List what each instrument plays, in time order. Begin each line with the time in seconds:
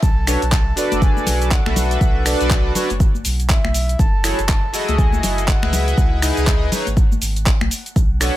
0.02 sub bass B1, soft synth lead A5, kick, closed hi-hat, cabasa
0.27 analog polysynth D4 F#4 A4 B4 C#5, finger snap, open hi-hat, cabasa
0.42 sub bass B1, closed hi-hat, cabasa
0.52 kick, clap, closed hi-hat, cabasa
0.76 analog polysynth D4 F#4 A4 B4 D5, open hi-hat, cabasa
0.92 sub bass F#1, closed hi-hat, high conga, cabasa
1.02 soft synth lead G#5, kick, closed hi-hat, cabasa
1.17 high conga, cabasa
1.26 sub bass B1, open hi-hat, low conga, cabasa
1.42 closed hi-hat, cabasa
1.51 soft synth lead F#5, kick, clap, closed hi-hat, cabasa
1.65 sub bass B1, analog polysynth D4 F#4 A4 B4 E5, finger snap, high conga
1.76 soft synth lead F#5, open hi-hat, low conga, cabasa
1.91 closed hi-hat, cabasa
2.01 sub bass B1, kick, closed hi-hat, cabasa
2.25 analog polysynth D4 F#4 A4 B4 D5, finger snap, open hi-hat, cabasa
2.41 sub bass B1, closed hi-hat, cabasa
2.50 kick, clap, closed hi-hat, cabasa
2.75 analog polysynth D4 F#4 A4 B4 C#5, open hi-hat, low conga, cabasa
2.90 sub bass F#1, closed hi-hat, high conga, cabasa
3.00 kick, closed hi-hat, cabasa
3.15 high conga, cabasa
3.25 sub bass B1, open hi-hat, cabasa
3.40 closed hi-hat, cabasa
3.50 soft synth lead E5, kick, clap, closed hi-hat, cabasa
3.64 sub bass B1, finger snap, high conga
3.74 open hi-hat, cabasa
3.89 closed hi-hat, cabasa
3.99 sub bass F#1, soft synth lead A5, kick, closed hi-hat, cabasa
4.24 analog polysynth E4 F#4 G#4 A4 C#5, finger snap, open hi-hat, cabasa
4.39 sub bass F#1, closed hi-hat, cabasa
4.49 kick, clap, closed hi-hat, cabasa
4.73 analog polysynth E4 F#4 G#4 A4 D#5, open hi-hat, cabasa
4.88 sub bass C#2, closed hi-hat, high conga, cabasa
4.98 soft synth lead G#5, kick, closed hi-hat, cabasa
5.13 high conga, cabasa
5.23 sub bass F#1, open hi-hat, low conga, cabasa
5.38 closed hi-hat, cabasa
5.48 soft synth lead F#5, kick, clap, closed hi-hat, cabasa
5.62 sub bass C#2, analog polysynth E4 G#4 B4 D#5 E5, finger snap, high conga
5.73 soft synth lead F#5, open hi-hat, low conga, cabasa
5.88 closed hi-hat, cabasa
5.98 sub bass C#2, kick, closed hi-hat, cabasa
6.22 analog polysynth D#4 E4 G#4 B4 D#5, finger snap, open hi-hat, cabasa
6.37 sub bass C#2, closed hi-hat, cabasa
6.47 kick, clap, closed hi-hat, cabasa
6.71 analog polysynth D#4 E4 G#4 B4 C#5, open hi-hat, low conga, cabasa
6.87 sub bass G#1, closed hi-hat, high conga, cabasa
6.97 kick, closed hi-hat, cabasa
7.12 high conga, cabasa
7.22 sub bass G#1, open hi-hat, cabasa
7.36 closed hi-hat, cabasa
7.46 kick, clap, closed hi-hat, cabasa
7.61 sub bass B1, finger snap, high conga
7.71 open hi-hat, cabasa
7.86 closed hi-hat, cabasa
7.96 sub bass B1, kick, closed hi-hat, cabasa
8.20 analog polysynth D4 F#4 A4 B4 C#5, soft synth lead F#5, finger snap, open hi-hat, cabasa